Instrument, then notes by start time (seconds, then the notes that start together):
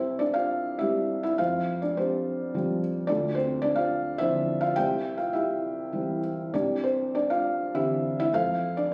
felt piano
Already playing: C2 C4 E4 G4 C5 E5
0.19 D4 D5
0.34 F4 C5 F5
0.79 G3 C4 E4 G4 E5
1.23 E4 E5
1.38 F2 F4 C5 F5
1.82 D4 D5
1.97 C4 G4 C5
2.54 F3 G3 C4
3.07 D2 D4 F4 A4 D5
3.35 C4 C5
3.62 D4 D5
3.76 F4 C5 F5
4.18 D3 F3 C4 E4 C5 E5
4.61 F4 F5
4.76 C2 G4 C5 E5 G5
5.17 F4 F5
5.33 E4 G4 E5
5.92 E3 G3 C4
6.53 C2 D4 G4 D5
6.84 C4 C5
7.15 D4 D5
7.30 F4 D5 F5
7.74 D3 E3 C4 E4 G4 E5
8.20 E4 E5
8.33 F2 F4 A4 C5 F5
8.77 D4 D5